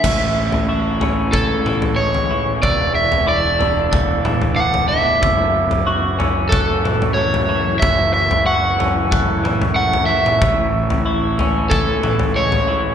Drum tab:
CC |x---------------|----------------|----------------|----------------|
T2 |----------o-----|----------o-----|----------o-----|----------o----o|
FT |o--o--o-o--o-o--|o--o--o-o--o-o--|o--o--o-o--o-o--|o--o--o-o--o-o--|
BD |o-------o-------|o-------o-------|o-------o-------|o-------o-------|

CC |----------------|
T2 |----------o-----|
FT |o--o--o-o--o-o--|
BD |o-------o-------|